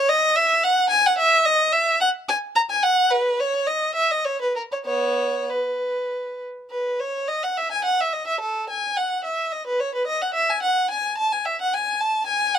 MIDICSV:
0, 0, Header, 1, 2, 480
1, 0, Start_track
1, 0, Tempo, 554017
1, 1254, Time_signature, 3, 2, 24, 8
1, 3187, Tempo, 608519
1, 5587, Tempo, 561272
1, 7987, Tempo, 547445
1, 10669, End_track
2, 0, Start_track
2, 0, Title_t, "Violin"
2, 0, Program_c, 0, 40
2, 77, Note_on_c, 0, 75, 98
2, 308, Note_off_c, 0, 75, 0
2, 311, Note_on_c, 0, 76, 94
2, 545, Note_off_c, 0, 76, 0
2, 547, Note_on_c, 0, 78, 95
2, 774, Note_on_c, 0, 80, 92
2, 780, Note_off_c, 0, 78, 0
2, 891, Note_off_c, 0, 80, 0
2, 919, Note_on_c, 0, 78, 85
2, 1021, Note_on_c, 0, 76, 95
2, 1026, Note_off_c, 0, 78, 0
2, 1252, Note_off_c, 0, 76, 0
2, 1257, Note_on_c, 0, 75, 91
2, 1490, Note_on_c, 0, 76, 88
2, 1496, Note_off_c, 0, 75, 0
2, 1733, Note_off_c, 0, 76, 0
2, 1739, Note_on_c, 0, 78, 87
2, 1808, Note_off_c, 0, 78, 0
2, 1982, Note_on_c, 0, 80, 83
2, 2051, Note_off_c, 0, 80, 0
2, 2214, Note_on_c, 0, 82, 89
2, 2262, Note_off_c, 0, 82, 0
2, 2344, Note_on_c, 0, 80, 82
2, 2448, Note_on_c, 0, 78, 93
2, 2457, Note_off_c, 0, 80, 0
2, 2695, Note_off_c, 0, 78, 0
2, 2696, Note_on_c, 0, 71, 78
2, 2940, Note_off_c, 0, 71, 0
2, 2941, Note_on_c, 0, 73, 79
2, 3177, Note_on_c, 0, 75, 75
2, 3186, Note_off_c, 0, 73, 0
2, 3401, Note_on_c, 0, 76, 76
2, 3411, Note_off_c, 0, 75, 0
2, 3522, Note_off_c, 0, 76, 0
2, 3528, Note_on_c, 0, 75, 69
2, 3635, Note_on_c, 0, 73, 72
2, 3647, Note_off_c, 0, 75, 0
2, 3760, Note_off_c, 0, 73, 0
2, 3767, Note_on_c, 0, 71, 56
2, 3880, Note_on_c, 0, 70, 63
2, 3884, Note_off_c, 0, 71, 0
2, 3929, Note_off_c, 0, 70, 0
2, 4008, Note_on_c, 0, 73, 60
2, 4057, Note_off_c, 0, 73, 0
2, 4115, Note_on_c, 0, 59, 57
2, 4116, Note_on_c, 0, 73, 71
2, 4583, Note_off_c, 0, 59, 0
2, 4605, Note_off_c, 0, 73, 0
2, 4619, Note_on_c, 0, 71, 55
2, 5348, Note_off_c, 0, 71, 0
2, 5577, Note_on_c, 0, 71, 56
2, 5806, Note_off_c, 0, 71, 0
2, 5823, Note_on_c, 0, 73, 62
2, 6065, Note_off_c, 0, 73, 0
2, 6066, Note_on_c, 0, 75, 69
2, 6187, Note_off_c, 0, 75, 0
2, 6192, Note_on_c, 0, 78, 62
2, 6311, Note_off_c, 0, 78, 0
2, 6316, Note_on_c, 0, 76, 61
2, 6433, Note_off_c, 0, 76, 0
2, 6438, Note_on_c, 0, 80, 68
2, 6546, Note_on_c, 0, 78, 65
2, 6553, Note_off_c, 0, 80, 0
2, 6667, Note_off_c, 0, 78, 0
2, 6684, Note_on_c, 0, 76, 57
2, 6788, Note_on_c, 0, 75, 60
2, 6799, Note_off_c, 0, 76, 0
2, 6911, Note_off_c, 0, 75, 0
2, 6912, Note_on_c, 0, 76, 61
2, 7024, Note_on_c, 0, 69, 65
2, 7030, Note_off_c, 0, 76, 0
2, 7263, Note_off_c, 0, 69, 0
2, 7272, Note_on_c, 0, 80, 70
2, 7505, Note_off_c, 0, 80, 0
2, 7508, Note_on_c, 0, 78, 63
2, 7742, Note_on_c, 0, 76, 58
2, 7747, Note_off_c, 0, 78, 0
2, 7979, Note_off_c, 0, 76, 0
2, 7979, Note_on_c, 0, 75, 64
2, 8105, Note_off_c, 0, 75, 0
2, 8107, Note_on_c, 0, 71, 61
2, 8224, Note_on_c, 0, 73, 67
2, 8226, Note_off_c, 0, 71, 0
2, 8347, Note_off_c, 0, 73, 0
2, 8357, Note_on_c, 0, 71, 54
2, 8460, Note_on_c, 0, 75, 68
2, 8471, Note_off_c, 0, 71, 0
2, 8583, Note_off_c, 0, 75, 0
2, 8592, Note_on_c, 0, 78, 64
2, 8698, Note_on_c, 0, 76, 67
2, 8712, Note_off_c, 0, 78, 0
2, 8823, Note_off_c, 0, 76, 0
2, 8836, Note_on_c, 0, 80, 66
2, 8949, Note_on_c, 0, 78, 70
2, 8956, Note_off_c, 0, 80, 0
2, 9191, Note_off_c, 0, 78, 0
2, 9194, Note_on_c, 0, 80, 67
2, 9432, Note_on_c, 0, 81, 79
2, 9434, Note_off_c, 0, 80, 0
2, 9554, Note_off_c, 0, 81, 0
2, 9564, Note_on_c, 0, 80, 67
2, 9676, Note_on_c, 0, 76, 70
2, 9682, Note_off_c, 0, 80, 0
2, 9798, Note_off_c, 0, 76, 0
2, 9815, Note_on_c, 0, 78, 67
2, 9924, Note_off_c, 0, 78, 0
2, 9924, Note_on_c, 0, 80, 71
2, 10157, Note_on_c, 0, 81, 80
2, 10158, Note_off_c, 0, 80, 0
2, 10385, Note_on_c, 0, 80, 77
2, 10392, Note_off_c, 0, 81, 0
2, 10619, Note_off_c, 0, 80, 0
2, 10634, Note_on_c, 0, 78, 71
2, 10669, Note_off_c, 0, 78, 0
2, 10669, End_track
0, 0, End_of_file